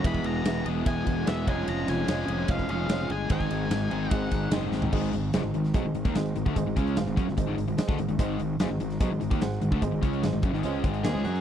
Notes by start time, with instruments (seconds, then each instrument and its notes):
0.04 fingered electric bass E1, overdriven electric guitar E2 B2 E3 G#3 B3 E4 G#4, upright piano G#4 B4 E5, lead electric guitar B5, kick, ride
0.14 kick
0.24 fingered electric bass E1, lead electric guitar A#5, ride
0.45 fingered electric bass E1, upright piano G#4 B4 E5, snare, ride
0.66 fingered electric bass E1, overdriven electric guitar E2 B2 E3 G#3 B3 E4 G#4, ride
0.85 fingered electric bass E1, upright piano G#4 B4 E5, lead electric guitar G#5, kick, ride
1.07 fingered electric bass E1, kick, ride
1.26 fingered electric bass E1, overdriven electric guitar E2 B2 E3 G#3 B3 E4 G#4, upright piano G#4 B4 E5, lead electric guitar E5, snare, ride
1.47 fingered electric bass F1, overdriven electric guitar F3 G#3 C#4 F4 G#4, upright piano F4 C#5 D#5, lead electric guitar G#5, kick, ride
1.68 fingered electric bass F1, lead electric guitar A#5, ride
1.88 fingered electric bass F1, lead electric guitar G#5, snare, ride
2.08 fingered electric bass F1, overdriven electric guitar F3 G#3 C#4 F4 G#4, upright piano F4 C#5 D#5, snare, ride
2.28 fingered electric bass F1, ride
2.48 fingered electric bass F1, upright piano F4 C#5 D#5, lead electric guitar F5, kick, ride
2.59 kick
2.68 fingered electric bass F1, overdriven electric guitar F3 G#3 C#4 F4 G#4, lead electric guitar F5, ride
2.89 fingered electric bass F1, upright piano F4 C#5 D#5, snare, ride
3.10 fingered electric bass G1, lead electric guitar G#5, ride
3.29 fingered electric bass G#1, overdriven electric guitar G#2 D#3 G#3 C4 D#4 G#4, upright piano G#4 C5 D#5, lead electric guitar G#5, kick, ride
3.40 kick
3.51 fingered electric bass G#1, snare, ride
3.71 fingered electric bass G#1, upright piano G#4 C5 D#5, snare, ride
3.90 fingered electric bass G#1, overdriven electric guitar G#2 D#3 G#3 C4 D#4 G#4, ride
4.11 fingered electric bass G#1, upright piano G#4 C5 D#5, lead electric guitar F#5, kick, ride
4.31 fingered electric bass G#1, kick, ride
4.51 fingered electric bass F#1, overdriven electric guitar G#2 D#3 G#3 C4 D#4 G#4, upright piano G#4 C5 D#5, snare, ride
4.72 fingered electric bass G#1, snare
4.82 floor tom
4.92 fingered electric bass G#1, overdriven electric guitar G#2 D#3 G#3, upright piano G#4 C5 D#5, kick, crash
5.13 fingered electric bass G#1, overdriven electric guitar G#2 D#3, closed hi-hat
5.33 fingered electric bass F#1, overdriven electric guitar F#2 C#3, upright piano G#4 C5 D#5, snare, closed hi-hat
5.44 fingered electric bass G#1, overdriven electric guitar G#2 D#3
5.54 fingered electric bass G#1, overdriven electric guitar G#2 D#3, closed hi-hat
5.64 snare, closed hi-hat
5.74 fingered electric bass B1, overdriven electric guitar B2 F#3, upright piano G#4 C5 D#5, kick, closed hi-hat
5.85 fingered electric bass G#1, overdriven electric guitar G#2 D#3
5.95 fingered electric bass G#1, overdriven electric guitar G#2 D#3, closed hi-hat
6.05 fingered electric bass D#2, overdriven electric guitar D#3 A#3, kick, closed hi-hat
6.15 fingered electric bass G#1, overdriven electric guitar G#2 D#3, upright piano G#4 C5 D#5, snare, closed hi-hat
6.26 closed hi-hat
6.36 fingered electric bass G#1, overdriven electric guitar G#2 D#3, closed hi-hat
6.46 fingered electric bass D2, overdriven electric guitar D3 A3, kick
6.56 fingered electric bass G#1, overdriven electric guitar G#2 D#3, upright piano G#4 C5 D#5, kick, closed hi-hat
6.66 fingered electric bass G#1, overdriven electric guitar G#2 D#3
6.76 fingered electric bass C#2, overdriven electric guitar C#3 G#3 C#4, kick, closed hi-hat
6.87 closed hi-hat
6.96 fingered electric bass G#1, overdriven electric guitar G#2 D#3, upright piano G#4 C5 F5, snare, closed hi-hat
7.07 fingered electric bass G#1, overdriven electric guitar G#2 D#3, closed hi-hat
7.16 fingered electric bass F#2, overdriven electric guitar F#3 C#4, kick, closed hi-hat
7.27 fingered electric bass G#1, overdriven electric guitar G#2 D#3, snare
7.37 fingered electric bass G#1, overdriven electric guitar G#2 D#3, upright piano G#4 C5 D#5, kick, closed hi-hat
7.47 fingered electric bass G#1, overdriven electric guitar G#2 D#3
7.57 fingered electric bass G#1, overdriven electric guitar G#2 D#3, closed hi-hat
7.68 fingered electric bass G#1, overdriven electric guitar G#2 D#3, closed hi-hat
7.77 upright piano G#4 C5 D#5, muted overdriven electric guitar stroke, muted fingered electric bass stroke, snare, closed hi-hat
7.88 fingered electric bass D2, overdriven electric guitar D3 A3, kick, snare
7.98 fingered electric bass G#1, overdriven electric guitar G#2 D#3, closed hi-hat
8.09 fingered electric bass G#1, overdriven electric guitar G#2 D#3, closed hi-hat
8.18 fingered electric bass G#1, overdriven electric guitar G#2 D#3 G#3, upright piano G#4 C5 D#5, kick, closed hi-hat
8.39 fingered electric bass G#1, overdriven electric guitar G#2 D#3, closed hi-hat
8.60 fingered electric bass F#1, overdriven electric guitar F#2 C#3, upright piano G#4 C5 D#5, snare, closed hi-hat
8.70 fingered electric bass G#1, overdriven electric guitar G#2 D#3
8.80 fingered electric bass G#1, overdriven electric guitar G#2 D#3, closed hi-hat
8.90 snare, closed hi-hat
9.00 fingered electric bass B1, overdriven electric guitar B2 F#3, upright piano G#4 C5 D#5, kick, closed hi-hat
9.11 fingered electric bass G#1, overdriven electric guitar G#2 D#3
9.20 fingered electric bass G#1, overdriven electric guitar G#2 D#3, closed hi-hat
9.30 fingered electric bass D#2, overdriven electric guitar D#3 A#3, kick, closed hi-hat
9.41 fingered electric bass G#1, overdriven electric guitar G#2 D#3, upright piano G#4 C5 F#5, snare, closed hi-hat
9.52 snare, closed hi-hat
9.61 fingered electric bass G#1, overdriven electric guitar G#2 D#3, closed hi-hat
9.72 fingered electric bass D2, overdriven electric guitar D3 A3, kick
9.81 fingered electric bass G#1, overdriven electric guitar G#2 D#3, upright piano G#4 C5 D#5, kick, closed hi-hat
9.91 fingered electric bass G#1, overdriven electric guitar G#2 D#3
10.02 fingered electric bass C#2, overdriven electric guitar C#3 G#3 C#4, kick, closed hi-hat
10.13 closed hi-hat
10.23 fingered electric bass G#1, overdriven electric guitar G#2 D#3, upright piano G#4 C5 D#5, snare, closed hi-hat
10.33 fingered electric bass G#1, overdriven electric guitar G#2 D#3, closed hi-hat
10.42 fingered electric bass F#1, overdriven electric guitar F#2 C#3, kick, closed hi-hat
10.53 fingered electric bass G#1, overdriven electric guitar G#2 D#3, snare
10.63 fingered electric bass C#2, overdriven electric guitar C#3 G#3 C#4, upright piano G#4 C5 D#5, closed hi-hat
10.83 fingered electric bass G#1, overdriven electric guitar G#2 D#3 G#3, kick, closed hi-hat
10.94 closed hi-hat
11.03 fingered electric bass D#2, overdriven electric guitar D#3 A#3, upright piano G#4 C5 D#5, lead electric guitar G#4, snare, closed hi-hat
11.13 fingered electric bass C#2, overdriven electric guitar C#3 G#3
11.24 fingered electric bass F#2, overdriven electric guitar F#3 C#4 F#4, closed hi-hat
11.35 closed hi-hat